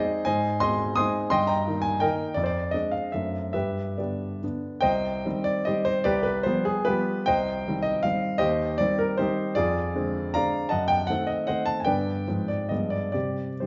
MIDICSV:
0, 0, Header, 1, 2, 480
1, 0, Start_track
1, 0, Key_signature, -3, "minor"
1, 0, Tempo, 349243
1, 390, Time_signature, 3, 2, 24, 8
1, 3763, Tempo, 404040
1, 4723, Tempo, 439560
1, 5683, Tempo, 414079
1, 7123, Tempo, 402414
1, 9043, Tempo, 384369
1, 15283, Tempo, 436364
1, 16243, Tempo, 472069
1, 16771, End_track
2, 0, Start_track
2, 0, Title_t, "Grand piano"
2, 0, Program_c, 0, 0
2, 0, Note_on_c, 0, 56, 59
2, 0, Note_on_c, 0, 60, 61
2, 0, Note_on_c, 0, 63, 71
2, 0, Note_on_c, 0, 68, 74
2, 0, Note_on_c, 0, 72, 73
2, 0, Note_on_c, 0, 75, 96
2, 334, Note_off_c, 0, 56, 0
2, 337, Note_off_c, 0, 60, 0
2, 337, Note_off_c, 0, 75, 0
2, 339, Note_off_c, 0, 72, 0
2, 340, Note_off_c, 0, 68, 0
2, 341, Note_off_c, 0, 63, 0
2, 342, Note_on_c, 0, 80, 110
2, 357, Note_on_c, 0, 75, 83
2, 364, Note_on_c, 0, 72, 78
2, 371, Note_on_c, 0, 44, 71
2, 581, Control_c, 0, 64, 127
2, 816, Note_off_c, 0, 75, 0
2, 819, Note_off_c, 0, 72, 0
2, 820, Note_off_c, 0, 80, 0
2, 829, Note_on_c, 0, 84, 115
2, 840, Note_on_c, 0, 75, 86
2, 840, Note_on_c, 0, 80, 88
2, 842, Note_off_c, 0, 44, 0
2, 861, Note_on_c, 0, 56, 55
2, 865, Note_on_c, 0, 60, 54
2, 872, Note_on_c, 0, 63, 56
2, 1300, Note_off_c, 0, 56, 0
2, 1302, Note_off_c, 0, 60, 0
2, 1304, Note_off_c, 0, 75, 0
2, 1304, Note_off_c, 0, 80, 0
2, 1307, Note_off_c, 0, 63, 0
2, 1311, Note_off_c, 0, 84, 0
2, 1313, Note_on_c, 0, 87, 115
2, 1331, Note_on_c, 0, 84, 89
2, 1335, Note_on_c, 0, 80, 84
2, 1342, Note_on_c, 0, 56, 63
2, 1346, Note_on_c, 0, 60, 63
2, 1359, Note_on_c, 0, 63, 67
2, 1367, Control_c, 0, 64, 0
2, 1769, Note_off_c, 0, 84, 0
2, 1771, Note_off_c, 0, 56, 0
2, 1773, Note_off_c, 0, 60, 0
2, 1780, Note_off_c, 0, 63, 0
2, 1781, Note_off_c, 0, 80, 0
2, 1790, Note_on_c, 0, 84, 110
2, 1804, Note_off_c, 0, 87, 0
2, 1806, Note_on_c, 0, 75, 93
2, 1806, Note_on_c, 0, 79, 88
2, 1819, Note_on_c, 0, 43, 65
2, 2023, Note_on_c, 0, 82, 96
2, 2025, Note_off_c, 0, 75, 0
2, 2028, Note_off_c, 0, 79, 0
2, 2042, Note_off_c, 0, 84, 0
2, 2046, Note_on_c, 0, 75, 73
2, 2049, Note_on_c, 0, 79, 69
2, 2053, Control_c, 0, 64, 127
2, 2289, Note_off_c, 0, 43, 0
2, 2297, Note_on_c, 0, 51, 50
2, 2303, Note_on_c, 0, 58, 52
2, 2304, Note_on_c, 0, 63, 60
2, 2497, Note_on_c, 0, 80, 100
2, 2511, Note_off_c, 0, 75, 0
2, 2513, Note_off_c, 0, 79, 0
2, 2535, Note_off_c, 0, 82, 0
2, 2738, Note_off_c, 0, 51, 0
2, 2742, Note_off_c, 0, 58, 0
2, 2742, Note_off_c, 0, 63, 0
2, 2751, Note_on_c, 0, 79, 92
2, 2764, Note_off_c, 0, 80, 0
2, 2764, Note_on_c, 0, 70, 77
2, 2766, Note_on_c, 0, 75, 73
2, 2786, Note_on_c, 0, 51, 56
2, 2786, Note_on_c, 0, 58, 58
2, 2792, Note_on_c, 0, 63, 66
2, 2808, Control_c, 0, 64, 0
2, 3213, Note_off_c, 0, 51, 0
2, 3213, Note_off_c, 0, 58, 0
2, 3215, Note_off_c, 0, 70, 0
2, 3216, Note_off_c, 0, 63, 0
2, 3217, Note_off_c, 0, 75, 0
2, 3222, Note_on_c, 0, 74, 94
2, 3243, Note_off_c, 0, 79, 0
2, 3253, Note_on_c, 0, 41, 64
2, 3324, Note_off_c, 0, 74, 0
2, 3347, Note_on_c, 0, 72, 73
2, 3377, Note_on_c, 0, 74, 87
2, 3429, Note_off_c, 0, 72, 0
2, 3498, Control_c, 0, 64, 127
2, 3728, Note_on_c, 0, 75, 85
2, 3738, Note_off_c, 0, 74, 0
2, 3743, Note_off_c, 0, 41, 0
2, 3767, Note_on_c, 0, 60, 44
2, 3767, Note_on_c, 0, 62, 49
2, 3769, Note_on_c, 0, 56, 47
2, 3777, Control_c, 0, 64, 0
2, 3973, Note_on_c, 0, 77, 76
2, 3985, Note_off_c, 0, 75, 0
2, 4190, Note_off_c, 0, 60, 0
2, 4190, Note_off_c, 0, 62, 0
2, 4191, Note_off_c, 0, 56, 0
2, 4218, Note_on_c, 0, 76, 77
2, 4221, Note_off_c, 0, 77, 0
2, 4241, Note_on_c, 0, 57, 39
2, 4243, Note_on_c, 0, 42, 52
2, 4249, Note_on_c, 0, 60, 40
2, 4258, Note_on_c, 0, 62, 40
2, 4470, Control_c, 0, 64, 127
2, 4678, Note_off_c, 0, 57, 0
2, 4682, Note_off_c, 0, 60, 0
2, 4686, Note_off_c, 0, 76, 0
2, 4687, Note_off_c, 0, 62, 0
2, 4704, Note_on_c, 0, 76, 80
2, 4712, Note_off_c, 0, 42, 0
2, 4717, Note_on_c, 0, 67, 57
2, 4718, Note_on_c, 0, 71, 58
2, 4731, Control_c, 0, 64, 0
2, 4733, Note_on_c, 0, 43, 49
2, 4953, Control_c, 0, 64, 127
2, 5170, Note_off_c, 0, 67, 0
2, 5170, Note_off_c, 0, 71, 0
2, 5191, Note_on_c, 0, 74, 54
2, 5197, Note_off_c, 0, 43, 0
2, 5198, Note_off_c, 0, 76, 0
2, 5199, Note_on_c, 0, 71, 42
2, 5207, Note_on_c, 0, 67, 44
2, 5215, Note_on_c, 0, 50, 39
2, 5220, Note_on_c, 0, 59, 37
2, 5223, Note_on_c, 0, 62, 42
2, 5643, Note_off_c, 0, 50, 0
2, 5646, Note_off_c, 0, 59, 0
2, 5646, Note_off_c, 0, 71, 0
2, 5647, Note_off_c, 0, 62, 0
2, 5650, Note_off_c, 0, 67, 0
2, 5675, Note_off_c, 0, 74, 0
2, 5688, Note_on_c, 0, 50, 43
2, 5697, Note_on_c, 0, 59, 42
2, 5699, Control_c, 0, 64, 0
2, 5699, Note_on_c, 0, 62, 45
2, 6113, Note_off_c, 0, 50, 0
2, 6118, Note_off_c, 0, 59, 0
2, 6119, Note_off_c, 0, 62, 0
2, 6124, Note_on_c, 0, 79, 106
2, 6140, Note_on_c, 0, 72, 82
2, 6145, Note_on_c, 0, 75, 82
2, 6156, Note_on_c, 0, 36, 65
2, 6374, Control_c, 0, 64, 127
2, 6625, Note_off_c, 0, 36, 0
2, 6641, Note_on_c, 0, 51, 59
2, 6649, Note_on_c, 0, 60, 68
2, 6654, Note_on_c, 0, 55, 61
2, 6658, Control_c, 0, 64, 0
2, 6830, Note_off_c, 0, 72, 0
2, 6833, Note_off_c, 0, 75, 0
2, 6862, Note_on_c, 0, 74, 99
2, 6868, Note_off_c, 0, 79, 0
2, 7077, Note_off_c, 0, 51, 0
2, 7081, Note_off_c, 0, 60, 0
2, 7084, Note_off_c, 0, 55, 0
2, 7104, Note_on_c, 0, 75, 89
2, 7111, Note_off_c, 0, 74, 0
2, 7123, Note_on_c, 0, 72, 68
2, 7124, Note_on_c, 0, 67, 70
2, 7136, Note_on_c, 0, 51, 49
2, 7143, Note_on_c, 0, 60, 54
2, 7147, Note_on_c, 0, 55, 50
2, 7321, Note_off_c, 0, 72, 0
2, 7338, Note_on_c, 0, 72, 104
2, 7346, Note_off_c, 0, 67, 0
2, 7352, Note_off_c, 0, 75, 0
2, 7551, Note_off_c, 0, 51, 0
2, 7555, Note_off_c, 0, 60, 0
2, 7557, Note_off_c, 0, 55, 0
2, 7569, Note_on_c, 0, 74, 104
2, 7579, Note_off_c, 0, 72, 0
2, 7580, Note_on_c, 0, 67, 84
2, 7581, Note_on_c, 0, 71, 85
2, 7587, Note_on_c, 0, 36, 67
2, 7777, Note_off_c, 0, 71, 0
2, 7782, Control_c, 0, 64, 127
2, 7795, Note_off_c, 0, 67, 0
2, 7795, Note_on_c, 0, 71, 93
2, 7806, Note_off_c, 0, 74, 0
2, 8037, Note_on_c, 0, 72, 100
2, 8042, Note_off_c, 0, 36, 0
2, 8047, Note_off_c, 0, 71, 0
2, 8065, Note_on_c, 0, 53, 58
2, 8070, Note_on_c, 0, 55, 60
2, 8074, Note_on_c, 0, 59, 66
2, 8075, Control_c, 0, 64, 0
2, 8294, Note_off_c, 0, 72, 0
2, 8296, Note_on_c, 0, 68, 90
2, 8501, Note_off_c, 0, 53, 0
2, 8503, Note_off_c, 0, 55, 0
2, 8505, Note_off_c, 0, 59, 0
2, 8531, Note_on_c, 0, 71, 97
2, 8541, Note_off_c, 0, 68, 0
2, 8543, Note_on_c, 0, 67, 75
2, 8546, Note_on_c, 0, 65, 73
2, 8559, Note_on_c, 0, 53, 50
2, 8570, Note_on_c, 0, 55, 53
2, 8570, Note_on_c, 0, 59, 58
2, 9002, Note_off_c, 0, 53, 0
2, 9006, Note_off_c, 0, 67, 0
2, 9007, Note_off_c, 0, 55, 0
2, 9008, Note_off_c, 0, 59, 0
2, 9008, Note_off_c, 0, 65, 0
2, 9021, Note_on_c, 0, 79, 108
2, 9035, Note_off_c, 0, 71, 0
2, 9040, Note_on_c, 0, 72, 83
2, 9040, Note_on_c, 0, 75, 78
2, 9049, Note_on_c, 0, 36, 62
2, 9250, Control_c, 0, 64, 127
2, 9516, Note_off_c, 0, 36, 0
2, 9539, Note_on_c, 0, 51, 61
2, 9547, Note_on_c, 0, 55, 59
2, 9547, Note_on_c, 0, 60, 66
2, 9708, Note_off_c, 0, 75, 0
2, 9718, Note_off_c, 0, 72, 0
2, 9727, Note_on_c, 0, 75, 95
2, 9759, Note_off_c, 0, 79, 0
2, 9962, Note_off_c, 0, 51, 0
2, 9966, Note_off_c, 0, 55, 0
2, 9966, Note_off_c, 0, 60, 0
2, 9979, Note_on_c, 0, 77, 104
2, 9982, Note_off_c, 0, 75, 0
2, 9999, Note_on_c, 0, 51, 50
2, 10005, Note_on_c, 0, 55, 50
2, 10015, Note_on_c, 0, 60, 54
2, 10020, Control_c, 0, 64, 0
2, 10414, Note_off_c, 0, 51, 0
2, 10417, Note_off_c, 0, 55, 0
2, 10422, Note_on_c, 0, 75, 107
2, 10423, Note_off_c, 0, 60, 0
2, 10432, Note_on_c, 0, 72, 80
2, 10434, Note_on_c, 0, 67, 77
2, 10449, Note_on_c, 0, 39, 67
2, 10450, Note_off_c, 0, 77, 0
2, 10689, Control_c, 0, 64, 127
2, 10899, Note_off_c, 0, 72, 0
2, 10900, Note_off_c, 0, 67, 0
2, 10918, Note_on_c, 0, 74, 100
2, 10928, Note_off_c, 0, 39, 0
2, 10929, Note_off_c, 0, 75, 0
2, 10948, Note_on_c, 0, 51, 59
2, 10952, Note_on_c, 0, 55, 62
2, 10960, Note_on_c, 0, 60, 68
2, 10967, Control_c, 0, 64, 0
2, 11177, Note_on_c, 0, 70, 90
2, 11186, Note_off_c, 0, 74, 0
2, 11393, Note_off_c, 0, 51, 0
2, 11395, Note_off_c, 0, 55, 0
2, 11399, Note_off_c, 0, 60, 0
2, 11413, Note_on_c, 0, 72, 93
2, 11431, Note_off_c, 0, 70, 0
2, 11432, Note_on_c, 0, 63, 75
2, 11433, Note_on_c, 0, 67, 73
2, 11438, Note_on_c, 0, 51, 52
2, 11451, Note_on_c, 0, 55, 53
2, 11453, Note_on_c, 0, 60, 57
2, 11855, Note_off_c, 0, 51, 0
2, 11862, Note_off_c, 0, 55, 0
2, 11863, Note_off_c, 0, 60, 0
2, 11865, Note_off_c, 0, 63, 0
2, 11866, Note_off_c, 0, 67, 0
2, 11883, Note_on_c, 0, 74, 105
2, 11888, Note_off_c, 0, 72, 0
2, 11895, Note_on_c, 0, 65, 77
2, 11899, Note_on_c, 0, 68, 80
2, 11914, Note_on_c, 0, 41, 67
2, 12120, Control_c, 0, 64, 127
2, 12378, Note_off_c, 0, 41, 0
2, 12384, Note_on_c, 0, 50, 62
2, 12388, Note_on_c, 0, 56, 59
2, 12396, Note_on_c, 0, 60, 64
2, 12826, Note_off_c, 0, 65, 0
2, 12828, Note_off_c, 0, 68, 0
2, 12829, Note_off_c, 0, 50, 0
2, 12831, Note_off_c, 0, 56, 0
2, 12835, Note_off_c, 0, 60, 0
2, 12858, Note_off_c, 0, 74, 0
2, 12866, Note_on_c, 0, 82, 113
2, 12877, Note_on_c, 0, 74, 87
2, 12879, Note_on_c, 0, 77, 85
2, 12890, Note_on_c, 0, 50, 48
2, 12895, Note_on_c, 0, 56, 49
2, 12896, Control_c, 0, 64, 0
2, 12904, Note_on_c, 0, 60, 54
2, 13297, Note_off_c, 0, 50, 0
2, 13299, Note_off_c, 0, 56, 0
2, 13303, Note_off_c, 0, 74, 0
2, 13304, Note_off_c, 0, 60, 0
2, 13304, Note_off_c, 0, 77, 0
2, 13306, Note_on_c, 0, 81, 93
2, 13319, Note_on_c, 0, 75, 74
2, 13323, Note_on_c, 0, 78, 74
2, 13329, Note_off_c, 0, 82, 0
2, 13343, Note_on_c, 0, 42, 62
2, 13540, Note_off_c, 0, 75, 0
2, 13540, Note_on_c, 0, 79, 103
2, 13541, Control_c, 0, 64, 127
2, 13542, Note_off_c, 0, 78, 0
2, 13551, Note_off_c, 0, 81, 0
2, 13779, Note_on_c, 0, 78, 104
2, 13801, Note_off_c, 0, 79, 0
2, 13803, Note_off_c, 0, 42, 0
2, 13811, Note_on_c, 0, 51, 56
2, 13815, Note_on_c, 0, 57, 56
2, 13817, Note_on_c, 0, 60, 59
2, 13825, Control_c, 0, 64, 0
2, 14027, Note_on_c, 0, 75, 83
2, 14049, Note_off_c, 0, 78, 0
2, 14258, Note_off_c, 0, 51, 0
2, 14260, Note_off_c, 0, 57, 0
2, 14262, Note_off_c, 0, 60, 0
2, 14266, Note_off_c, 0, 75, 0
2, 14278, Note_on_c, 0, 78, 93
2, 14285, Note_on_c, 0, 75, 69
2, 14289, Note_on_c, 0, 72, 75
2, 14302, Note_on_c, 0, 51, 47
2, 14304, Note_on_c, 0, 57, 46
2, 14314, Note_on_c, 0, 60, 50
2, 14511, Note_on_c, 0, 81, 100
2, 14518, Note_off_c, 0, 75, 0
2, 14520, Note_off_c, 0, 72, 0
2, 14532, Note_off_c, 0, 78, 0
2, 14683, Note_off_c, 0, 81, 0
2, 14694, Note_on_c, 0, 80, 74
2, 14732, Note_off_c, 0, 51, 0
2, 14733, Note_off_c, 0, 57, 0
2, 14738, Note_off_c, 0, 60, 0
2, 14748, Note_on_c, 0, 79, 92
2, 14760, Note_on_c, 0, 74, 69
2, 14763, Note_on_c, 0, 71, 68
2, 14775, Note_on_c, 0, 50, 42
2, 14778, Note_on_c, 0, 43, 59
2, 14779, Note_off_c, 0, 80, 0
2, 14782, Note_on_c, 0, 59, 42
2, 14791, Note_on_c, 0, 62, 42
2, 15025, Control_c, 0, 64, 127
2, 15231, Note_off_c, 0, 50, 0
2, 15235, Note_off_c, 0, 59, 0
2, 15239, Note_off_c, 0, 62, 0
2, 15268, Note_off_c, 0, 43, 0
2, 15286, Note_on_c, 0, 53, 41
2, 15291, Note_on_c, 0, 44, 56
2, 15295, Control_c, 0, 64, 0
2, 15297, Note_on_c, 0, 60, 41
2, 15472, Note_off_c, 0, 74, 0
2, 15473, Note_off_c, 0, 71, 0
2, 15511, Note_off_c, 0, 79, 0
2, 15512, Note_on_c, 0, 74, 77
2, 15522, Control_c, 0, 64, 127
2, 15722, Note_off_c, 0, 53, 0
2, 15727, Note_off_c, 0, 60, 0
2, 15740, Note_on_c, 0, 75, 67
2, 15754, Note_off_c, 0, 44, 0
2, 15758, Note_off_c, 0, 74, 0
2, 15765, Note_on_c, 0, 53, 39
2, 15766, Note_on_c, 0, 43, 51
2, 15770, Note_on_c, 0, 56, 39
2, 15778, Note_on_c, 0, 59, 39
2, 15779, Control_c, 0, 64, 0
2, 15975, Note_on_c, 0, 74, 81
2, 15990, Note_off_c, 0, 75, 0
2, 16004, Control_c, 0, 64, 127
2, 16199, Note_off_c, 0, 74, 0
2, 16201, Note_off_c, 0, 53, 0
2, 16203, Note_off_c, 0, 56, 0
2, 16207, Note_off_c, 0, 59, 0
2, 16215, Note_on_c, 0, 74, 77
2, 16226, Note_on_c, 0, 67, 57
2, 16231, Note_off_c, 0, 43, 0
2, 16238, Note_on_c, 0, 48, 44
2, 16240, Note_on_c, 0, 60, 36
2, 16243, Note_on_c, 0, 55, 37
2, 16255, Control_c, 0, 64, 0
2, 16446, Control_c, 0, 64, 127
2, 16575, Note_off_c, 0, 48, 0
2, 16625, Note_off_c, 0, 60, 0
2, 16626, Note_off_c, 0, 55, 0
2, 16680, Note_off_c, 0, 67, 0
2, 16707, Note_on_c, 0, 72, 57
2, 16709, Note_off_c, 0, 74, 0
2, 16719, Note_on_c, 0, 67, 45
2, 16723, Note_on_c, 0, 63, 40
2, 16728, Note_on_c, 0, 43, 43
2, 16771, Note_off_c, 0, 43, 0
2, 16771, Note_off_c, 0, 63, 0
2, 16771, Note_off_c, 0, 67, 0
2, 16771, Note_off_c, 0, 72, 0
2, 16771, End_track
0, 0, End_of_file